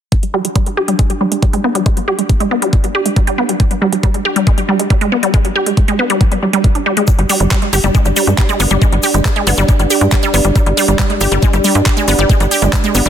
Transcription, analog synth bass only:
7.19 G1
7.40 G1
7.73 G1
7.84 G1
8.06 G1
8.27 G2
8.60 G1
8.71 G1
8.92 G1
9.14 G1
9.47 G1
9.58 G1
9.79 G1
10.01 G2
10.34 G1
10.45 G1
10.66 G1
10.88 G1
11.21 G1
11.32 G1
11.53 G1
11.75 G2
12.08 G1
12.19 G1
12.40 G1
12.62 G1
12.95 G1
13.06 G1

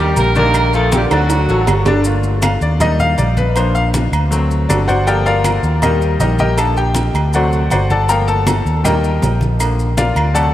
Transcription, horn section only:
Already playing: G3 G4
0.18 A#3 A#4
0.36 A#3 A#4
0.74 A3 A4
0.93 G3 G4
1.13 F#3 F#4

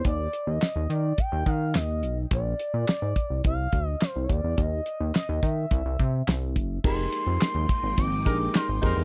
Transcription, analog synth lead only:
0.07 D5
0.49 D#5
0.91 D5
1.19 G5
1.48 F5
1.76 D#5
2.33 D5
3.46 F5
3.87 D#5
4.03 C5
4.24 C#5
4.31 D5
4.60 D#5
5.17 D#5
5.45 E5
6.86 C6
8.00 D6
8.56 C6
8.84 C6

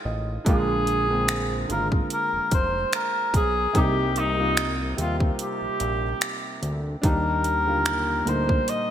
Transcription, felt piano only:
Already playing: D#3 G#3 C4 E4 F4 F5 G5
0.05 D#5
0.45 D3 G#3 A#3 F4
1.08 D3 G#3 A#3 C4
1.67 D3 G#3 A#3 F4
3.73 C3 G3 A#3 D#4
4.36 C3 G3 A#3 F4
4.96 C3 G3 A#3 C4
7.02 G3 A#3 D4 D#4
7.65 D3 G3 A#3 F4
8.25 A#2 G3 A#3 D#4

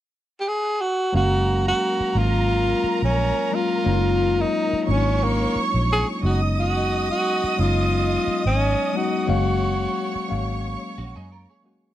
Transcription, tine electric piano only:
1.12 F#3 G#3 A#3 C#4 F5
2.15 F#3 G#3 A#3 C#4 F4
3.51 F#3 G#3 A#3 C#4 F4
3.84 F#3 G#3 A#3 C#4 D#4
3.93 F4
4.86 F#3 G#3 A#3 C#4 D4
4.96 D#4
6.21 F#3 G#3 B3 C#4 D#4
7.57 F#3 G#3 B3 C#4 D#4
8.93 F#3 G#3 B3 C#4 D#4
9.27 F#3 G#3 A#3 C#4 F5
10.28 F#3 G#3 A#3 C#4 F5
11.63 F#3 G#3 A#3 C#4 F#4

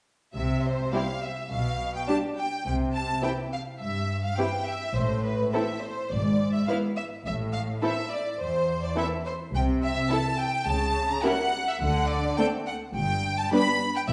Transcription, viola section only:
0.93 G3 C4
2.08 G3 D4
3.23 E3 C4
4.38 E3 C4
5.54 E3 C4
6.68 E3 B3
7.82 E3 C4
8.96 E3 C4
10.10 E3 E4
11.24 G3 C#4
12.38 A3 C4
13.52 G3 B3
14.09 G3 B3

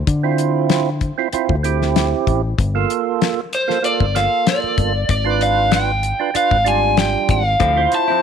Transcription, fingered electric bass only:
0.07 D3
1.33 muted fingered electric bass stroke
1.49 D2
2.27 A1
2.58 G1
4.00 G1
4.63 muted fingered electric bass stroke
4.78 G1
5.09 G#1
6.35 muted fingered electric bass stroke
6.51 G#1
7.29 G#1
7.60 D2

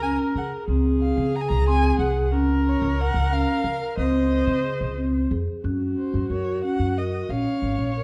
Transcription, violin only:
0.02 G#5
0.37 F#5
1.01 F5
1.36 A#5
1.41 G#5
1.48 A#5
1.68 G#5
1.99 F#5
2.68 C#5
3.01 F#5
3.33 F5
3.98 D#5
5.98 C5
6.31 C#5
6.64 F#5
6.98 D#5
7.30 F5

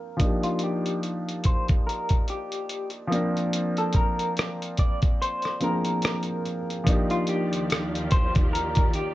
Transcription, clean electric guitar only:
Already playing: A#4
0.44 F4
0.64 G4
1.46 C5
1.87 A#4
2.30 G4
3.78 A4
3.96 A#4
4.79 D5
5.22 C5
5.64 A#4
7.11 F4
7.29 G4
8.12 C5
8.53 A#4
8.95 G4

